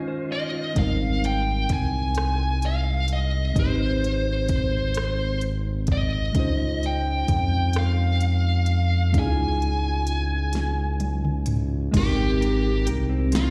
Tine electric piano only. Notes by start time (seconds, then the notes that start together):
Already playing: G#3 C#4 D#4 F4 C5
0.74 G#3 C4 D#4
0.79 G3 A#4
3.54 G#3 C4 D#4
3.59 G4 B4
3.67 C5
6.33 G#3 C#4 D#4
6.38 F4 C5
9.12 G#3 C#4 D#4
9.18 E4 G#4
9.24 F4
11.92 G#3 B3 D#4
11.97 C4 G4 A#4